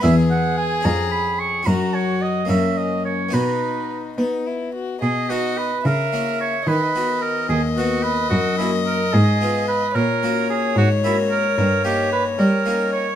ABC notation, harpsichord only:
X:1
M:6/8
L:1/8
Q:3/8=73
K:B
V:1 name="Harpsichord"
[B,EG]3 [CG]3 | [CF]3 [A,CF]3 | [B,DF]6 | z [B,DF]2 z [A,CE]2 |
z [B,F]3 [B,F]2 | z [A,CF]2 z [_C=F]2 | z [A,CF]3 [A,CF]2 | [K:D#phr] z [A,CD]3 [A,CD]2 |]
V:2 name="Harpsichord" clef=bass
E,,3 ^E,,3 | F,,3 F,,3 | B,,3 B,3 | B,,3 C,3 |
D,3 D,,3 | F,,3 _A,,3 | A,,3 G,,3 | [K:D#phr] =G,,3 =G,3 |]